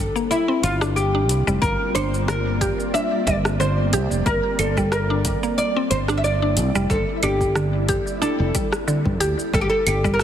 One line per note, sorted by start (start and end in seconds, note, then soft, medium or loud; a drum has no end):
0.00 9.54 G3 medium
0.00 10.23 C4 medium
0.00 1.49 D4 medium
0.00 0.26 A4 medium
0.00 0.19 C5 medium
0.15 9.54 A#3 medium
0.15 0.30 A#3 medium
0.15 cabasa soft
0.31 0.63 E4 loud
0.31 cabasa soft
0.42 5.38 F4 medium
0.48 0.80 C4 medium
0.63 1.29 G1 loud
0.63 0.96 F4 medium
0.63 closed hi-hat medium
0.63 cabasa medium
0.75 10.23 D5 medium
0.81 0.90 D4 loud
0.81 cross-stick medium
0.81 cabasa soft
0.96 1.44 G4 medium
0.96 cabasa soft
1.15 1.29 D4 medium
1.29 1.42 C2 loud
1.29 closed hi-hat medium
1.29 cabasa medium
1.47 1.58 F1 medium
1.47 1.62 G3 loud
1.47 cabasa soft
1.62 1.75 G1 loud
1.62 1.94 A#4 loud
1.62 kick loud
1.62 cabasa soft
1.95 2.71 G1 medium
1.95 2.27 D4 medium
1.95 2.28 C5 loud
1.95 closed hi-hat medium
1.95 cabasa medium
1.95 claves medium
2.14 cabasa soft
2.28 2.45 D3 medium
2.28 2.94 A#4 loud
2.28 cross-stick medium
2.28 cabasa soft
2.61 2.71 G4 loud
2.61 kick loud
2.61 closed hi-hat medium
2.61 cabasa medium
2.80 cabasa soft
2.94 3.11 D4 medium
2.94 3.26 E5 loud
2.94 cabasa soft
3.27 3.94 G1 loud
3.27 3.44 G3 medium
3.27 3.36 D5 loud
3.27 kick loud
3.27 closed hi-hat medium
3.27 cabasa medium
3.45 cross-stick medium
3.45 cabasa soft
3.60 3.92 D3 medium
3.60 4.07 C5 loud
3.60 cabasa soft
3.93 4.06 C2 loud
3.93 4.03 G4 loud
3.93 closed hi-hat medium
3.93 cabasa medium
4.11 4.22 F1 medium
4.11 cabasa soft
4.26 4.39 G1 loud
4.26 4.43 G3 medium
4.26 4.59 A#4 loud
4.26 kick loud
4.26 cabasa soft
4.59 5.35 G1 medium
4.59 4.92 A4 medium
4.59 closed hi-hat medium
4.59 cabasa medium
4.59 claves medium
4.77 4.92 G3 loud
4.77 kick medium
4.77 cabasa soft
4.92 5.60 A#4 loud
4.92 cross-stick medium
4.92 cabasa soft
5.10 5.24 D4 medium
5.18 10.23 E4 medium
5.25 kick loud
5.25 closed hi-hat medium
5.25 cabasa medium
5.43 5.57 A#3 medium
5.43 cabasa soft
5.58 5.90 D5 loud
5.58 cabasa soft
5.76 6.07 C4 medium
5.91 6.59 G1 loud
5.91 5.98 C5 medium
5.91 closed hi-hat medium
5.91 cabasa medium
6.08 6.18 D4 medium
6.08 cross-stick medium
6.08 cabasa soft
6.17 6.24 E5 medium
6.24 6.90 D5 loud
6.24 cabasa soft
6.42 6.56 D4 medium
6.57 6.70 C2 loud
6.57 closed hi-hat medium
6.57 cabasa medium
6.75 6.86 F1 medium
6.75 6.89 G3 loud
6.75 cabasa soft
6.90 7.03 G1 loud
6.90 7.23 A4 medium
6.90 kick loud
6.90 cabasa soft
7.23 7.99 G1 medium
7.23 7.55 D4 medium
7.23 8.21 G4 medium
7.23 closed hi-hat medium
7.23 cabasa medium
7.23 claves medium
7.41 kick medium
7.41 cabasa soft
7.56 7.73 D3 medium
7.56 cross-stick medium
7.56 cabasa soft
7.89 7.99 G4 loud
7.89 kick loud
7.89 closed hi-hat medium
7.89 cabasa medium
8.07 cabasa soft
8.22 8.39 D4 medium
8.22 8.84 A4 medium
8.22 cabasa soft
8.40 8.50 F1 medium
8.55 8.72 G3 medium
8.55 kick loud
8.55 closed hi-hat medium
8.55 cabasa medium
8.73 cross-stick medium
8.73 cabasa soft
8.88 9.19 D3 medium
8.88 cabasa soft
9.06 9.21 G2 medium
9.06 kick medium
9.20 9.33 D2 medium
9.20 9.31 G4 loud
9.20 closed hi-hat medium
9.20 cabasa medium
9.39 cabasa soft
9.53 9.66 G1 loud
9.53 9.71 G3 medium
9.53 9.61 A4 loud
9.53 kick loud
9.53 cabasa soft
9.61 9.69 G4 medium
9.70 9.87 A4 medium
9.86 10.23 G1 medium
9.86 10.13 G4 medium
9.86 10.23 G4 medium
9.86 closed hi-hat medium
9.86 cabasa medium
9.86 claves medium
10.01 10.19 G3 loud
10.01 10.23 D4 medium
10.01 kick medium
10.05 cabasa soft
10.14 10.20 A#4 medium
10.19 cross-stick medium
10.19 cabasa soft